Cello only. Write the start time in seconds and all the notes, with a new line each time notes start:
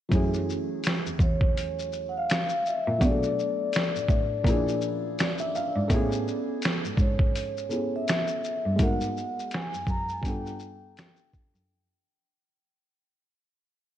0.12 F#2
1.07 E2
1.19 E2
2.87 A#2
3.01 B2
3.96 A2
4.09 A2
4.45 A#2
5.76 G#2
5.90 A2
6.85 G#2
6.98 G#2
8.65 G2
8.79 G#2
9.74 F#2
9.87 F#2
10.23 G2
11.55 F#2